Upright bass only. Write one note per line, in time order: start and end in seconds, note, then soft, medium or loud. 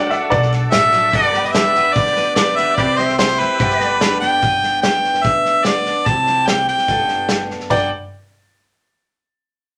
0.00 0.12 D2 medium
0.32 0.66 B1 medium
0.72 1.07 A1 medium
1.13 1.76 G1 medium
1.96 2.58 D2 medium
2.78 3.40 C2 medium
3.60 4.22 G1 medium
4.43 5.05 G1 medium
5.25 5.87 D2 medium
6.06 6.69 C2 medium
6.88 7.51 G1 loud
7.71 7.90 G1 medium